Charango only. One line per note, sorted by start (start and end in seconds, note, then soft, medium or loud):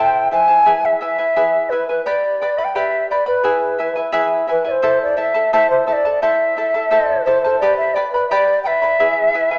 0.00 0.30 E4 medium
0.00 0.31 A4 medium
0.00 0.31 C5 medium
0.00 0.30 E5 medium
0.00 0.32 A5 medium
0.31 0.48 E4 medium
0.31 0.48 C5 medium
0.31 0.48 E5 medium
0.31 0.47 A5 medium
0.48 0.65 E4 soft
0.48 0.65 C5 soft
0.48 0.66 A5 medium
0.66 1.00 E4 medium
0.66 1.01 G#4 medium
0.66 1.00 B4 medium
0.66 1.00 E5 medium
0.66 1.01 G#5 medium
1.01 1.19 E4 medium
1.01 1.18 B4 medium
1.01 1.18 E5 medium
1.01 1.17 G#5 medium
1.18 1.35 E4 soft
1.18 1.36 B4 soft
1.18 1.36 G#5 medium
1.36 1.71 E4 medium
1.36 1.71 G#4 medium
1.36 1.71 B4 medium
1.36 1.70 E5 medium
1.36 1.71 G#5 medium
1.71 1.88 E4 medium
1.71 1.89 B4 medium
1.71 1.88 E5 soft
1.71 1.88 G#5 medium
1.89 2.06 E4 soft
1.89 2.05 B4 soft
1.89 2.06 G#5 soft
2.06 2.40 G4 medium
2.06 2.41 B4 medium
2.06 2.41 D5 medium
2.06 2.40 G5 medium
2.06 2.41 B5 medium
2.42 2.58 B4 medium
2.42 2.58 D5 medium
2.42 2.58 G5 medium
2.42 2.57 B5 medium
2.58 2.74 B4 soft
2.58 2.75 D5 soft
2.58 2.75 B5 medium
2.75 3.10 G4 medium
2.75 3.10 B4 medium
2.75 3.10 D5 medium
2.75 3.10 G5 medium
2.75 3.10 B5 medium
3.11 3.26 B4 medium
3.11 3.26 D5 medium
3.11 3.27 G5 medium
3.11 3.25 B5 medium
3.26 3.43 B4 soft
3.26 3.44 D5 soft
3.26 3.44 B5 medium
3.44 3.78 E4 medium
3.44 3.79 G#4 medium
3.44 3.79 B4 medium
3.44 3.77 E5 medium
3.44 3.79 G#5 medium
3.79 3.96 E4 medium
3.79 3.95 B4 medium
3.79 3.96 E5 medium
3.79 3.94 G#5 medium
3.96 4.12 E4 soft
3.96 4.12 B4 soft
3.96 4.12 G#5 medium
4.12 4.47 E4 medium
4.12 4.48 G#4 medium
4.12 4.47 B4 medium
4.12 4.46 E5 medium
4.12 4.48 G#5 medium
4.47 4.65 E4 medium
4.47 4.64 B4 medium
4.47 4.65 E5 medium
4.47 4.63 G#5 medium
4.65 4.82 E4 soft
4.65 4.83 B4 soft
4.65 4.82 G#5 medium
4.82 5.16 E4 medium
4.82 5.17 A4 medium
4.82 5.17 C5 medium
4.82 5.16 E5 medium
4.82 5.17 A5 medium
5.17 5.34 E4 medium
5.17 5.34 A4 medium
5.17 5.35 E5 medium
5.17 5.33 A5 medium
5.34 5.52 E4 soft
5.34 5.53 A4 soft
5.34 5.52 A5 medium
5.53 5.86 E4 medium
5.53 5.86 A4 medium
5.53 5.87 C5 medium
5.53 5.86 E5 medium
5.53 5.86 A5 medium
5.87 6.05 E4 medium
5.87 6.05 A4 medium
5.87 6.04 E5 medium
5.87 6.04 A5 medium
6.05 6.22 E4 soft
6.05 6.22 A4 soft
6.05 6.22 A5 medium
6.22 6.56 E4 medium
6.22 6.57 A4 medium
6.22 6.57 C5 medium
6.22 6.55 E5 medium
6.22 6.57 A5 medium
6.57 6.74 E4 medium
6.57 6.74 A4 medium
6.57 6.74 E5 medium
6.57 6.73 A5 medium
6.74 6.90 E4 soft
6.74 6.90 A4 soft
6.74 6.91 A5 medium
6.90 7.26 E4 medium
6.90 7.26 A4 medium
6.90 7.26 C5 medium
6.90 7.25 E5 medium
6.90 7.26 A5 medium
7.26 7.44 E4 medium
7.26 7.44 A4 medium
7.26 7.43 E5 medium
7.26 7.43 A5 medium
7.44 7.62 E4 soft
7.44 7.62 A4 medium
7.44 7.61 A5 medium
7.62 7.96 G4 medium
7.62 7.95 B4 medium
7.62 7.95 D5 medium
7.62 7.94 G5 medium
7.62 7.96 B5 medium
7.96 8.13 B4 medium
7.96 8.13 D5 medium
7.96 8.13 G5 medium
7.96 8.13 B5 medium
8.14 8.30 B4 soft
8.14 8.31 D5 soft
8.14 8.30 B5 medium
8.31 8.65 G4 medium
8.31 8.64 B4 medium
8.31 8.65 D5 medium
8.31 8.64 G5 medium
8.31 8.65 B5 medium
8.65 8.82 B4 medium
8.65 8.82 D5 medium
8.65 8.82 G5 medium
8.65 8.81 B5 medium
8.82 8.99 B4 soft
8.82 9.00 D5 soft
8.82 8.99 B5 medium
9.00 9.34 E4 medium
9.00 9.34 G#4 medium
9.00 9.34 B4 medium
9.00 9.33 E5 medium
9.00 9.34 G#5 medium
9.34 9.51 E4 medium
9.34 9.50 B4 medium
9.34 9.51 E5 medium
9.34 9.50 G#5 medium
9.51 9.59 E4 soft
9.51 9.59 B4 medium
9.51 9.59 G#5 medium